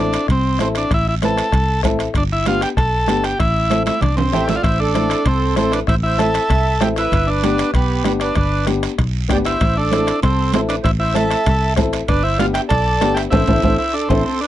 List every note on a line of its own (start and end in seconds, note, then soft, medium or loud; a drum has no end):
0.00 0.16 A1 medium
0.00 0.19 C4 medium
0.00 0.27 D4 medium
0.00 0.19 E4 medium
0.00 0.20 A4 medium
0.13 bombo rim medium
0.13 high timbale medium
0.13 short guiro medium
0.28 0.60 C2 medium
0.28 0.59 C4 medium
0.28 bombo low medium
0.28 bombo rim medium
0.28 high conga soft
0.28 high timbale medium
0.28 long guiro medium
0.59 0.85 A1 medium
0.59 0.82 C4 medium
0.59 0.69 C4 medium
0.59 0.82 E4 medium
0.59 0.82 A4 medium
0.59 bombo rim medium
0.59 high conga medium
0.59 high timbale medium
0.59 low timbale medium
0.59 short guiro medium
0.75 0.92 D4 medium
0.75 bombo rim medium
0.75 high timbale medium
0.75 short guiro medium
0.91 1.40 A1 medium
0.91 1.07 E4 medium
0.91 bombo low medium
0.91 bombo rim medium
0.91 high conga soft
0.91 high timbale medium
0.91 long guiro medium
1.09 1.15 E4 medium
1.22 1.44 C4 medium
1.22 1.44 E4 medium
1.22 1.81 A4 medium
1.22 1.44 B4 medium
1.22 bombo rim medium
1.22 high conga medium
1.22 high timbale medium
1.22 short guiro medium
1.37 bombo rim medium
1.37 high timbale medium
1.37 short guiro medium
1.52 1.83 C2 medium
1.52 bombo low medium
1.52 bombo rim medium
1.52 high conga soft
1.52 high timbale medium
1.52 long guiro medium
1.83 2.08 A1 medium
1.83 2.05 C4 medium
1.83 2.06 E4 medium
1.83 2.06 A4 medium
1.83 bombo low medium
1.83 bombo rim medium
1.83 high conga medium
1.83 high timbale medium
1.83 short guiro medium
1.99 bombo rim medium
1.99 high timbale medium
1.99 short guiro medium
2.14 2.64 G1 medium
2.14 2.24 D4 medium
2.14 bombo low medium
2.14 bombo rim medium
2.14 high conga soft
2.14 high timbale medium
2.14 long guiro medium
2.33 2.46 E4 medium
2.46 2.68 B3 medium
2.46 2.68 D4 medium
2.46 2.61 F4 medium
2.46 2.68 G4 medium
2.46 bombo rim medium
2.46 high conga medium
2.46 high timbale medium
2.46 short guiro medium
2.61 2.69 G4 loud
2.61 bombo rim medium
2.61 high timbale medium
2.61 short guiro medium
2.77 3.09 B1 medium
2.77 3.25 A4 loud
2.77 bombo low medium
2.77 bombo rim medium
2.77 high conga soft
2.77 high timbale medium
2.77 long guiro medium
3.08 3.33 G1 medium
3.08 3.30 B3 medium
3.08 3.30 D4 medium
3.08 3.30 G4 medium
3.08 bombo rim medium
3.08 high conga medium
3.08 high timbale medium
3.08 short guiro medium
3.24 3.39 G4 medium
3.24 bombo rim medium
3.24 high timbale medium
3.24 short guiro medium
3.39 3.89 A1 medium
3.39 3.83 E4 loud
3.39 bombo low medium
3.39 bombo rim medium
3.39 high conga soft
3.39 high timbale medium
3.39 long guiro medium
3.70 3.92 C4 medium
3.70 3.92 E4 medium
3.70 3.92 A4 medium
3.70 bombo rim medium
3.70 high conga medium
3.70 high timbale medium
3.70 short guiro medium
3.86 4.01 E4 medium
3.86 bombo rim medium
3.86 high conga medium
3.86 high timbale medium
3.86 short guiro medium
4.01 4.32 C2 medium
4.01 4.16 D4 medium
4.01 bombo low medium
4.01 bombo rim medium
4.01 low conga medium
4.01 high timbale medium
4.01 long guiro medium
4.17 4.46 C4 medium
4.17 low conga medium
4.17 high timbale medium
4.32 4.57 A1 medium
4.32 4.54 C4 medium
4.32 4.54 E4 medium
4.32 4.49 G4 medium
4.32 4.55 A4 medium
4.32 4.47 E5 medium
4.32 bombo rim medium
4.32 low conga medium
4.32 low timbale medium
4.32 short guiro medium
4.48 4.56 E4 medium
4.48 4.55 C5 medium
4.48 bombo rim medium
4.48 low conga medium
4.48 low timbale medium
4.48 short guiro medium
4.56 4.62 F4 medium
4.56 4.62 D5 medium
4.63 5.13 A1 medium
4.63 4.80 E4 medium
4.63 4.78 C5 medium
4.63 bombo low medium
4.63 bombo rim medium
4.63 high conga soft
4.63 high timbale medium
4.63 long guiro medium
4.80 5.27 D4 medium
4.80 5.23 A4 medium
4.94 5.16 C4 medium
4.94 5.17 E4 medium
4.94 5.16 A4 medium
4.94 bombo rim medium
4.94 high conga medium
4.94 high timbale medium
4.94 short guiro medium
5.10 bombo rim medium
5.10 high timbale medium
5.10 short guiro medium
5.25 5.57 C2 medium
5.25 5.55 C4 medium
5.25 5.55 A4 medium
5.25 bombo low medium
5.25 bombo rim medium
5.25 high conga soft
5.25 high timbale medium
5.25 long guiro medium
5.56 5.82 A1 medium
5.56 5.78 C4 medium
5.56 5.73 C4 medium
5.56 5.78 E4 medium
5.56 5.79 A4 medium
5.56 5.72 A4 medium
5.56 bombo rim medium
5.56 high conga medium
5.56 high timbale medium
5.56 short guiro medium
5.72 5.80 D4 medium
5.72 5.81 B4 medium
5.72 bombo rim medium
5.72 high timbale medium
5.72 short guiro medium
5.87 6.38 A1 loud
5.87 5.95 E4 loud
5.87 5.96 C5 medium
5.87 bombo low medium
5.87 bombo rim medium
5.87 high conga soft
5.87 high timbale medium
5.87 long guiro medium
6.03 6.19 E4 medium
6.03 6.19 C5 medium
6.18 6.40 C4 medium
6.18 6.40 E4 medium
6.18 6.41 A4 medium
6.18 6.83 A4 medium
6.18 6.78 E5 medium
6.18 bombo rim medium
6.18 high conga medium
6.18 high timbale medium
6.18 short guiro medium
6.34 bombo rim medium
6.34 high timbale medium
6.34 short guiro medium
6.50 6.81 C2 medium
6.50 bombo low medium
6.50 bombo rim medium
6.50 high conga soft
6.50 high timbale medium
6.50 long guiro medium
6.80 7.06 A1 medium
6.80 7.03 C4 medium
6.80 7.03 E4 medium
6.80 6.89 G4 medium
6.80 7.03 A4 medium
6.80 6.89 E5 medium
6.80 bombo rim medium
6.80 high conga medium
6.80 high timbale medium
6.80 low timbale medium
6.80 short guiro medium
6.96 7.29 E4 medium
6.96 7.26 B4 medium
6.96 bombo rim medium
6.96 high timbale medium
6.96 short guiro medium
7.12 7.62 G1 loud
7.12 bombo low medium
7.12 bombo rim medium
7.12 high conga soft
7.12 high timbale medium
7.12 long guiro medium
7.27 7.71 D4 medium
7.27 7.72 B4 medium
7.43 7.65 B3 medium
7.43 7.65 D4 medium
7.43 7.65 G4 medium
7.43 bombo rim medium
7.43 high conga medium
7.43 high timbale medium
7.43 short guiro medium
7.58 bombo rim medium
7.58 high timbale medium
7.58 short guiro medium
7.74 8.05 B1 medium
7.74 8.04 B3 medium
7.74 8.03 G4 medium
7.74 bombo low medium
7.74 bombo rim medium
7.74 high conga soft
7.74 high timbale medium
7.74 long guiro medium
8.04 8.30 G1 medium
8.04 8.26 B3 medium
8.04 8.13 B3 medium
8.04 8.27 D4 medium
8.04 8.27 G4 medium
8.04 8.13 G4 medium
8.04 bombo rim medium
8.04 high conga medium
8.04 high timbale medium
8.04 short guiro medium
8.20 8.35 D4 medium
8.20 8.37 B4 medium
8.20 bombo rim medium
8.20 high timbale medium
8.20 short guiro medium
8.35 8.86 G1 medium
8.35 8.66 D4 medium
8.35 8.66 B4 medium
8.35 bombo low medium
8.35 bombo rim medium
8.35 high conga soft
8.35 high timbale medium
8.35 long guiro medium
8.66 8.89 B3 medium
8.66 8.89 D4 medium
8.66 8.89 G4 medium
8.66 bombo rim medium
8.66 high conga medium
8.66 high timbale medium
8.66 short guiro medium
8.83 bombo rim medium
8.83 high timbale medium
8.83 short guiro medium
8.98 9.30 B1 medium
8.98 bombo low medium
8.98 bombo rim medium
8.98 high conga soft
8.98 high timbale medium
8.98 long guiro medium
9.28 9.55 G1 medium
9.28 9.51 B3 medium
9.28 9.51 D4 medium
9.28 9.51 G4 medium
9.28 9.37 G4 medium
9.28 9.39 D5 medium
9.28 bombo low medium
9.28 bombo rim medium
9.28 high conga medium
9.28 high timbale medium
9.28 low timbale medium
9.28 short guiro medium
9.45 9.77 E4 medium
9.45 9.75 C5 medium
9.45 bombo rim medium
9.45 high timbale medium
9.45 short guiro medium
9.60 10.11 A1 medium
9.60 bombo low medium
9.60 bombo rim medium
9.60 high conga soft
9.60 high timbale medium
9.60 long guiro medium
9.77 10.20 D4 medium
9.77 10.20 A4 medium
9.91 10.13 C4 medium
9.91 10.14 E4 medium
9.91 10.14 A4 medium
9.91 bombo rim medium
9.91 high conga medium
9.91 high timbale medium
9.91 short guiro medium
10.07 bombo rim medium
10.07 high timbale medium
10.07 short guiro medium
10.22 10.54 C2 medium
10.22 10.53 C4 medium
10.22 10.51 A4 medium
10.22 bombo low medium
10.22 bombo rim medium
10.22 high conga soft
10.22 high timbale medium
10.22 long guiro medium
10.53 10.79 A1 medium
10.53 10.61 C4 medium
10.53 10.76 C4 medium
10.53 10.76 E4 medium
10.53 10.60 A4 medium
10.53 10.76 A4 medium
10.53 bombo rim medium
10.53 high conga medium
10.53 high timbale medium
10.53 low timbale medium
10.53 short guiro medium
10.69 10.76 D4 medium
10.69 10.76 B4 medium
10.69 bombo rim medium
10.69 high timbale medium
10.69 short guiro medium
10.83 11.34 A1 loud
10.83 10.91 E4 loud
10.83 10.90 C5 medium
10.83 bombo low medium
10.83 bombo rim medium
10.83 high conga soft
10.83 high timbale medium
10.83 long guiro medium
11.00 11.14 E4 medium
11.00 11.14 C5 medium
11.14 11.37 C4 medium
11.14 11.37 E4 medium
11.14 11.73 A4 medium
11.14 11.37 A4 medium
11.14 11.74 E5 medium
11.14 bombo rim medium
11.14 high conga medium
11.14 high timbale medium
11.14 short guiro medium
11.31 bombo rim medium
11.31 high timbale medium
11.31 short guiro medium
11.46 11.77 C2 loud
11.46 bombo low medium
11.46 bombo rim medium
11.46 high conga soft
11.46 high timbale medium
11.46 long guiro medium
11.76 12.02 A1 medium
11.76 11.99 C4 medium
11.76 11.99 E4 medium
11.76 12.00 A4 loud
11.76 bombo low medium
11.76 bombo rim medium
11.76 high conga medium
11.76 high timbale medium
11.76 low timbale medium
11.76 short guiro medium
11.93 bombo rim medium
11.93 high timbale medium
11.93 short guiro medium
12.08 12.58 G1 loud
12.08 12.23 D4 medium
12.08 12.23 B4 medium
12.08 bombo low medium
12.08 bombo rim medium
12.08 high conga soft
12.08 high timbale medium
12.08 long guiro medium
12.23 12.38 E4 medium
12.23 12.38 C5 medium
12.38 12.61 B3 medium
12.38 12.61 D4 medium
12.38 12.46 F4 medium
12.38 12.62 G4 medium
12.38 12.45 D5 medium
12.38 bombo rim medium
12.38 high conga medium
12.38 high timbale medium
12.38 short guiro medium
12.53 12.61 G4 loud
12.53 12.60 E5 medium
12.53 bombo rim medium
12.53 high timbale medium
12.53 short guiro medium
12.69 13.02 B1 loud
12.69 13.18 A4 loud
12.69 13.13 D5 medium
12.69 bombo low medium
12.69 bombo rim medium
12.69 high conga soft
12.69 high timbale medium
12.69 long guiro medium
13.01 13.27 G1 medium
13.01 13.23 B3 medium
13.01 13.23 D4 medium
13.01 13.24 G4 medium
13.01 bombo rim medium
13.01 high conga medium
13.01 high timbale medium
13.01 short guiro medium
13.14 13.22 G4 medium
13.14 13.23 E5 medium
13.14 bombo rim medium
13.14 high timbale medium
13.14 short guiro medium
13.30 13.44 A1 medium
13.30 13.42 C4 loud
13.30 13.77 E4 loud
13.30 13.42 E4 medium
13.30 13.42 A4 medium
13.30 13.75 C5 medium
13.30 bombo low medium
13.30 high conga medium
13.30 high timbale loud
13.30 long guiro medium
13.47 13.60 A1 medium
13.47 13.58 C4 medium
13.47 13.58 E4 medium
13.47 13.58 A4 medium
13.47 bombo low loud
13.47 high conga medium
13.47 high timbale medium
13.47 long guiro medium
13.63 13.75 A1 medium
13.63 13.74 C4 medium
13.63 13.74 E4 medium
13.63 13.74 A4 medium
13.63 bombo low medium
13.63 high conga medium
13.63 high timbale medium
13.63 long guiro medium
13.77 13.95 E4 medium
13.77 13.93 C5 medium
13.93 14.09 D4 medium
13.93 14.08 A4 medium
14.09 14.22 A1 medium
14.09 14.24 C4 medium
14.09 14.20 C4 medium
14.09 14.20 E4 medium
14.09 14.20 A4 medium
14.09 14.25 A4 medium
14.09 bombo low medium
14.09 high conga medium
14.09 high timbale medium
14.09 long guiro medium
14.26 14.40 C4 medium
14.26 14.41 A4 medium
14.41 14.47 D4 medium
14.41 14.47 B4 medium